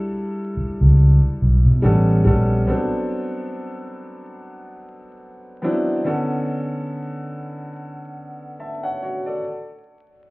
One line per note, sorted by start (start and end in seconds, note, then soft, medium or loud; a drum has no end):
0.00 0.89 G3 medium
0.00 0.90 D4 medium
0.00 0.90 E4 medium
0.00 0.91 A4 medium
0.57 muted fingered electric bass stroke soft
0.81 1.19 C#2 medium
1.42 1.63 B1 medium
1.66 1.82 B2 medium
1.82 2.22 A1 medium
1.82 2.22 G3 medium
1.82 2.23 B3 medium
1.82 2.23 C#4 medium
1.82 2.23 A4 medium
2.25 2.64 A#1 medium
2.25 2.65 G3 medium
2.25 2.65 B3 medium
2.25 2.65 C#4 medium
2.25 2.66 A4 medium
2.67 4.28 F#3 medium
2.67 4.28 B3 medium
2.67 4.28 C4 medium
2.67 4.28 D4 medium
2.67 4.29 A4 medium
5.62 6.02 F#3 medium
5.62 6.02 B3 medium
5.62 6.03 C4 medium
5.62 6.03 D4 medium
5.62 6.03 E4 medium
6.04 7.65 D3 medium
6.04 7.66 B3 medium
6.04 7.66 C#4 medium
6.04 7.66 A4 medium
8.60 8.82 E5 soft
8.60 8.82 A5 soft
8.83 9.00 C#5 soft
8.83 9.00 F#5 medium
9.03 9.24 F#4 soft
9.03 9.24 C#5 medium
9.26 9.66 A4 soft
9.26 9.65 D5 medium